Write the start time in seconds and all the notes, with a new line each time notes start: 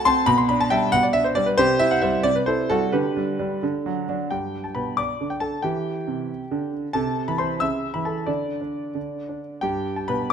Already playing: A3 F#4
0.05 C4 A5 C6
0.26 B2 B5
0.38 C6
0.49 D4 B5
0.60 A5
0.70 G3 E5 G5
0.92 B2 F#5
1.03 D5
1.13 D4 E5
1.24 C5
1.35 G3 D5
1.46 B4
1.57 C3 G4 C5
1.79 E4 E5
1.91 F#5
2.02 G3 C5 E5
2.23 C3 D5
2.35 B4
2.46 E4 A4 C5
2.70 G3 F#4 A4
2.92 D3 G4 B4
3.17 G3
3.40 G3 D4
3.63 D3
3.86 F#3
4.09 F#3 D4
4.30 G2 G4 G5
4.64 A5
4.75 B2 B4 B5
4.97 D5 D6
5.21 D3
5.30 G5
5.40 A4 A5
5.62 E3 G4 G5
6.07 C3
6.51 D3
6.93 C3 A4 A5
7.28 E3 B5
7.38 C5 C6
7.60 C#3 E5 E6
7.94 E3 B5
8.05 A4 A5
8.26 D3 D4 D5
8.61 D4
8.95 D3
9.29 D4
9.61 G2 G4 G5
9.96 A5
10.08 B2 B4 B5